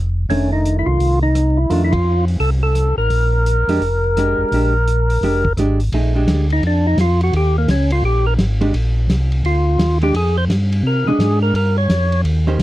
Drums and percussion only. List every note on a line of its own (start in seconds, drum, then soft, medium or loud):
0.30 open hi-hat soft
0.65 closed hi-hat medium
1.00 open hi-hat soft
1.35 cross-stick medium
1.35 closed hi-hat medium
1.71 open hi-hat soft
1.93 kick medium
1.93 ride medium
2.28 open hi-hat soft
2.40 open hi-hat soft
2.75 cross-stick medium
2.75 closed hi-hat medium
3.10 open hi-hat soft
3.46 closed hi-hat medium
3.69 open hi-hat soft
3.82 open hi-hat soft
4.17 cross-stick medium
4.17 closed hi-hat medium
4.52 open hi-hat soft
4.88 closed hi-hat soft
5.10 open hi-hat soft
5.23 open hi-hat soft
5.45 kick soft
5.57 cross-stick medium
5.57 closed hi-hat medium
5.80 open hi-hat soft
5.92 ride medium
6.28 snare medium
6.28 hi-hat pedal medium
6.28 ride medium
6.50 ride soft
6.63 ride soft
6.98 snare medium
6.98 hi-hat pedal medium
6.98 ride medium
7.21 ride soft
7.33 ride medium
7.68 snare medium
7.68 hi-hat pedal medium
7.68 ride medium
7.90 ride medium
8.38 snare medium
8.38 hi-hat pedal medium
8.38 ride medium
8.61 ride soft
8.74 ride medium
9.10 snare medium
9.10 hi-hat pedal medium
9.10 ride medium
9.32 ride soft
9.45 ride soft
9.79 snare medium
9.79 hi-hat pedal medium
9.79 ride medium
10.01 ride soft
10.14 ride medium
10.50 snare medium
10.50 hi-hat pedal medium
10.50 ride medium
10.72 ride medium
11.20 snare medium
11.20 hi-hat pedal medium
11.20 ride medium
11.55 ride medium
11.90 snare medium
11.90 hi-hat pedal medium
11.90 ride medium
12.12 ride soft
12.25 ride medium
12.59 snare medium
12.59 hi-hat pedal medium
12.59 ride medium